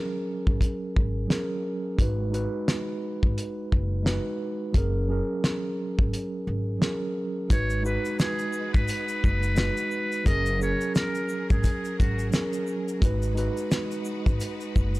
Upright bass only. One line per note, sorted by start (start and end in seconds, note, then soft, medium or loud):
0.47 0.59 G#1 medium
0.97 1.25 G#1 medium
1.99 2.44 G#1 loud
3.23 3.35 G#1 medium
3.73 4.17 F#1 medium
4.75 5.20 F#1 loud
5.99 6.10 G#1 medium
6.47 6.76 G#1 medium
7.50 7.95 G#1 loud
8.75 8.86 G#1 medium
9.24 9.69 F#1 medium
10.26 10.71 F#1 loud
11.50 11.62 G#1 medium
12.00 12.28 G#1 medium
13.02 13.47 G#1 loud
14.26 14.38 G#1 medium
14.76 15.00 F#1 loud